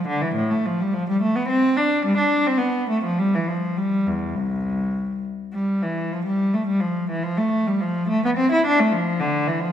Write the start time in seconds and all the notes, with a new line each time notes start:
0.08 D3
0.22 E3
0.35 A2
0.51 A3
0.66 F3
0.81 G3
0.94 F3
1.09 G3
1.22 A3
1.36 B3
1.49 C4
1.77 D4
2.05 G3
2.18 D4
2.47 C4
2.58 B3
2.89 A3
3.04 F3
3.19 G3
3.35 E3
3.48 F3
3.78 G3
4.07 E2
4.36 C2
5.53 G3
5.83 E3
6.13 F3
6.26 G3
6.54 A3
6.67 G3
6.80 F3
7.10 E3
7.24 F3
7.38 A3
7.67 G3
7.81 F3
8.09 A3
8.24 B3
8.37 C4
8.52 E4
8.66 D4
8.80 A3
8.92 F3
9.20 D3
9.48 E3
9.60 F3